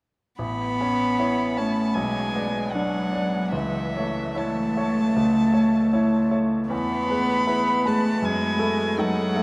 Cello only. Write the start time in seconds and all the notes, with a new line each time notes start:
0.40 B3
1.59 A3
1.97 G#3
2.74 F#3
3.51 E3
4.36 A3
6.69 B3
7.85 A3
8.25 G#3
9.00 F#3